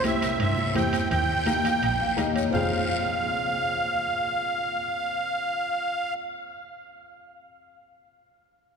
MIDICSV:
0, 0, Header, 1, 5, 480
1, 0, Start_track
1, 0, Key_signature, -4, "minor"
1, 0, Tempo, 355872
1, 1494, Time_signature, 4, 2, 24, 8
1, 11826, End_track
2, 0, Start_track
2, 0, Title_t, "Accordion"
2, 0, Program_c, 0, 21
2, 85, Note_on_c, 0, 76, 86
2, 518, Note_off_c, 0, 76, 0
2, 558, Note_on_c, 0, 76, 85
2, 994, Note_off_c, 0, 76, 0
2, 1026, Note_on_c, 0, 79, 86
2, 1465, Note_off_c, 0, 79, 0
2, 1485, Note_on_c, 0, 79, 91
2, 2877, Note_off_c, 0, 79, 0
2, 3417, Note_on_c, 0, 77, 82
2, 8282, Note_off_c, 0, 77, 0
2, 11826, End_track
3, 0, Start_track
3, 0, Title_t, "Upright piano"
3, 0, Program_c, 1, 0
3, 48, Note_on_c, 1, 60, 65
3, 52, Note_on_c, 1, 64, 62
3, 61, Note_on_c, 1, 67, 65
3, 388, Note_off_c, 1, 60, 0
3, 389, Note_off_c, 1, 64, 0
3, 394, Note_off_c, 1, 67, 0
3, 1006, Note_on_c, 1, 60, 68
3, 1011, Note_on_c, 1, 64, 58
3, 1016, Note_on_c, 1, 67, 78
3, 1347, Note_off_c, 1, 60, 0
3, 1349, Note_off_c, 1, 64, 0
3, 1351, Note_off_c, 1, 67, 0
3, 1972, Note_on_c, 1, 58, 59
3, 1977, Note_on_c, 1, 63, 52
3, 1979, Note_on_c, 1, 67, 71
3, 2219, Note_on_c, 1, 77, 60
3, 2310, Note_off_c, 1, 58, 0
3, 2312, Note_off_c, 1, 63, 0
3, 2313, Note_off_c, 1, 67, 0
3, 2441, Note_off_c, 1, 77, 0
3, 2456, Note_on_c, 1, 79, 59
3, 2679, Note_off_c, 1, 79, 0
3, 2703, Note_on_c, 1, 77, 60
3, 2922, Note_on_c, 1, 58, 73
3, 2923, Note_off_c, 1, 77, 0
3, 2927, Note_on_c, 1, 63, 74
3, 2931, Note_on_c, 1, 75, 60
3, 2936, Note_on_c, 1, 67, 83
3, 3156, Note_off_c, 1, 75, 0
3, 3169, Note_on_c, 1, 73, 63
3, 3265, Note_off_c, 1, 58, 0
3, 3267, Note_off_c, 1, 63, 0
3, 3272, Note_off_c, 1, 67, 0
3, 3380, Note_on_c, 1, 60, 73
3, 3395, Note_off_c, 1, 73, 0
3, 3411, Note_on_c, 1, 65, 66
3, 3437, Note_on_c, 1, 68, 81
3, 8758, Note_off_c, 1, 60, 0
3, 8789, Note_off_c, 1, 65, 0
3, 8815, Note_off_c, 1, 68, 0
3, 11826, End_track
4, 0, Start_track
4, 0, Title_t, "Double bass"
4, 0, Program_c, 2, 43
4, 0, Note_on_c, 2, 36, 85
4, 349, Note_off_c, 2, 36, 0
4, 531, Note_on_c, 2, 43, 88
4, 916, Note_off_c, 2, 43, 0
4, 1013, Note_on_c, 2, 40, 80
4, 1398, Note_off_c, 2, 40, 0
4, 1500, Note_on_c, 2, 39, 84
4, 2266, Note_off_c, 2, 39, 0
4, 2454, Note_on_c, 2, 34, 80
4, 2839, Note_off_c, 2, 34, 0
4, 2930, Note_on_c, 2, 39, 68
4, 3149, Note_off_c, 2, 39, 0
4, 3182, Note_on_c, 2, 41, 65
4, 3395, Note_off_c, 2, 41, 0
4, 3406, Note_on_c, 2, 29, 75
4, 8277, Note_off_c, 2, 29, 0
4, 11826, End_track
5, 0, Start_track
5, 0, Title_t, "Drums"
5, 53, Note_on_c, 9, 65, 63
5, 60, Note_on_c, 9, 63, 80
5, 70, Note_on_c, 9, 73, 65
5, 188, Note_off_c, 9, 65, 0
5, 195, Note_off_c, 9, 63, 0
5, 205, Note_off_c, 9, 73, 0
5, 300, Note_on_c, 9, 65, 64
5, 307, Note_on_c, 9, 73, 67
5, 435, Note_off_c, 9, 65, 0
5, 442, Note_off_c, 9, 73, 0
5, 537, Note_on_c, 9, 65, 66
5, 546, Note_on_c, 9, 74, 63
5, 672, Note_off_c, 9, 65, 0
5, 681, Note_off_c, 9, 74, 0
5, 777, Note_on_c, 9, 63, 76
5, 912, Note_off_c, 9, 63, 0
5, 1013, Note_on_c, 9, 63, 77
5, 1018, Note_on_c, 9, 65, 65
5, 1039, Note_on_c, 9, 73, 58
5, 1148, Note_off_c, 9, 63, 0
5, 1153, Note_off_c, 9, 65, 0
5, 1174, Note_off_c, 9, 73, 0
5, 1252, Note_on_c, 9, 65, 63
5, 1265, Note_on_c, 9, 73, 67
5, 1387, Note_off_c, 9, 65, 0
5, 1400, Note_off_c, 9, 73, 0
5, 1501, Note_on_c, 9, 65, 62
5, 1502, Note_on_c, 9, 74, 70
5, 1636, Note_off_c, 9, 65, 0
5, 1637, Note_off_c, 9, 74, 0
5, 1973, Note_on_c, 9, 65, 66
5, 1974, Note_on_c, 9, 63, 73
5, 1994, Note_on_c, 9, 73, 65
5, 2108, Note_off_c, 9, 65, 0
5, 2109, Note_off_c, 9, 63, 0
5, 2129, Note_off_c, 9, 73, 0
5, 2225, Note_on_c, 9, 65, 66
5, 2234, Note_on_c, 9, 73, 65
5, 2360, Note_off_c, 9, 65, 0
5, 2369, Note_off_c, 9, 73, 0
5, 2465, Note_on_c, 9, 65, 66
5, 2481, Note_on_c, 9, 74, 60
5, 2600, Note_off_c, 9, 65, 0
5, 2616, Note_off_c, 9, 74, 0
5, 2938, Note_on_c, 9, 65, 68
5, 2938, Note_on_c, 9, 66, 65
5, 2949, Note_on_c, 9, 63, 69
5, 2953, Note_on_c, 9, 73, 60
5, 3073, Note_off_c, 9, 65, 0
5, 3073, Note_off_c, 9, 66, 0
5, 3084, Note_off_c, 9, 63, 0
5, 3088, Note_off_c, 9, 73, 0
5, 3178, Note_on_c, 9, 65, 56
5, 3203, Note_on_c, 9, 73, 65
5, 3313, Note_off_c, 9, 65, 0
5, 3338, Note_off_c, 9, 73, 0
5, 3409, Note_on_c, 9, 66, 84
5, 3432, Note_on_c, 9, 64, 88
5, 3439, Note_on_c, 9, 74, 91
5, 3544, Note_off_c, 9, 66, 0
5, 3567, Note_off_c, 9, 64, 0
5, 3574, Note_off_c, 9, 74, 0
5, 11826, End_track
0, 0, End_of_file